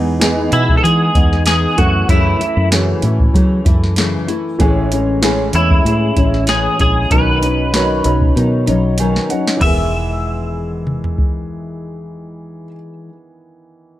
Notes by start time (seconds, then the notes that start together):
Already playing: E2 E3 G#3 B3 D#4 G#4
0.20 E3 G#3 B3 D#4 G#4, snare, closed hi-hat
0.51 B2 G#3 B3 D#4 E4, closed hi-hat
0.69 kick
0.77 A4
0.83 E3 G#3 B3 D#4 G#4, closed hi-hat
1.14 E2 G#3 B3 D#4, kick, closed hi-hat
1.33 snare
1.46 E3 G#3 B3 D#4 G#4, snare, closed hi-hat
1.77 F#2 E3 A3 C#4 E4 F#4, kick, closed hi-hat
2.09 F#2 C#3 E3 A3 E4, kick, closed hi-hat
2.39 E3 A3 E4, closed hi-hat
2.57 F#2
2.71 F#2 C#3 E3 A3 C#4 E4 F#4, snare, closed hi-hat
3.02 A2 E3 A3 E4, closed hi-hat
3.20 kick
3.34 C#3 E3 F#3 A3 E4, kick, closed hi-hat
3.65 F#2 E3 A3 E4, kick, closed hi-hat
3.84 snare
3.96 F#2 C#3 E3 A3 E4, snare, closed hi-hat
4.28 E3 A3 E4, closed hi-hat
4.59 A1 A2 E3 G#3 A3 C#4 E4 G#4, kick, closed hi-hat
4.91 G#3 C#4 E4, closed hi-hat
5.22 A2 E3 G#3 A3 C#4 E4 G#4, snare, closed hi-hat
5.53 E2 G#3 C#4 E4, closed hi-hat
5.71 kick
5.85 A2 E3 G#3 C#4 E4, closed hi-hat
6.16 A1 G#3 C#4 E4, kick, closed hi-hat
6.34 snare
6.47 A2 E3 G#3 C#4 E4 G#4, snare, closed hi-hat
6.79 A#1 G#3 C#4 E4 G#4, kick, closed hi-hat
7.10 B1 B2 D#3 F#3 C#4 D#4 B4, kick, closed hi-hat
7.41 F#3 C#4 D#4, closed hi-hat
7.73 B2 D#3 F#3 C#4 D#4 B4, snare, closed hi-hat
8.03 B1 F#3 C#4 D#4, closed hi-hat
8.22 kick
8.35 B2 D#3 F#3 C#4 D#4, closed hi-hat
8.66 B1 F#3 C#4 D#4, closed hi-hat
8.98 B2 D#3 F#3 C#4 D#4 G#5, closed hi-hat
9.16 snare
9.29 F#3 C#4 D#4 F#5, closed hi-hat
9.47 snare
9.57 E3 B3
9.61 E1 D#3 G#3 B3 E5, kick, crash
9.66 G#4
10.87 mid tom
11.04 floor tom
11.18 kick